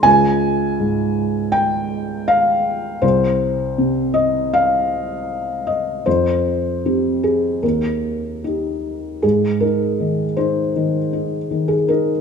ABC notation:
X:1
M:4/4
L:1/16
Q:1/4=79
K:Ab
V:1 name="Felt piano"
a8 g4 f4 | c6 e2 f6 e2 | c6 A2 B4 z4 | A2 B4 c6- c A B2 |]
V:2 name="Felt piano" clef=bass
D,,4 A,,12 | C,,4 C,12 | F,,4 [CG]4 E,,4 [EG]4 | A,,2 E2 E,2 E2 E,2 E2 E,2 E2 |]